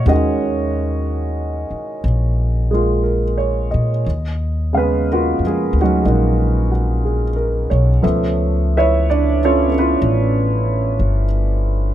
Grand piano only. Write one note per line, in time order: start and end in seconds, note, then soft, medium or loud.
0.00 0.08 F#4 medium
0.00 3.38 C#5 medium
0.00 0.09 D#5 medium
0.07 4.06 D#3 soft
0.07 2.69 G#3 soft
0.07 4.06 C#4 soft
0.07 0.11 F#4 soft
0.07 2.01 D#5 medium
0.11 2.02 F#4 soft
2.71 4.05 G#3 soft
2.71 4.05 A#3 soft
2.71 4.06 F4 soft
2.71 3.24 G#4 soft
3.03 3.69 A#4 soft
3.38 3.90 C#5 soft
3.71 4.24 D#5 soft
4.73 8.04 C#3 soft
4.73 5.45 G#3 soft
4.73 5.80 C#4 soft
4.73 8.04 F5 soft
4.77 5.08 B3 soft
4.77 5.07 B4 medium
5.12 5.42 A#3 soft
5.12 5.42 F4 soft
5.12 5.42 F#4 soft
5.12 5.41 A#4 soft
5.46 5.75 G#3 soft
5.46 5.75 G#4 soft
5.81 7.28 F#3 soft
5.81 7.28 C#4 soft
5.81 6.04 D#4 soft
5.81 6.70 F#4 soft
6.03 8.03 G#3 soft
6.03 8.04 A#3 soft
6.03 8.04 D#4 soft
6.71 7.23 F#4 soft
7.05 7.68 G#4 soft
7.36 7.89 A#4 soft
7.70 8.22 C#5 soft
8.02 11.94 F3 soft
8.02 11.94 A3 soft
8.02 9.66 B3 soft
8.02 8.76 E5 soft
8.77 9.06 E4 soft
8.77 9.06 B4 soft
8.77 9.06 C#5 soft
8.77 9.06 E5 medium
9.10 9.39 D4 soft
9.10 9.39 D5 medium
9.44 9.68 C#4 soft
9.44 9.73 F4 soft
9.44 9.69 A4 soft
9.44 9.73 C#5 medium
9.68 9.77 B3 soft
9.68 11.94 C#4 soft
9.68 11.94 A4 soft
9.78 11.25 B3 soft
9.78 11.25 E4 soft
9.78 11.25 F4 soft
9.78 11.25 B4 medium